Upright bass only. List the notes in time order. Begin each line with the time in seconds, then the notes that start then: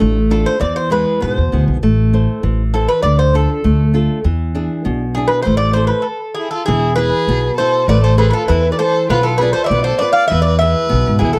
0.01 A1
0.61 E2
1.23 G#2
1.38 E2
1.53 D2
1.68 B1
1.83 A1
2.43 A1
3.03 D2
3.65 D2
4.25 E2
4.86 B1
5.47 A1
6.68 E1
7.28 B1
7.88 A1
8.49 E2
9.09 B1
9.70 B1
10.32 E2
10.92 B1
11.07 G#2
11.21 E2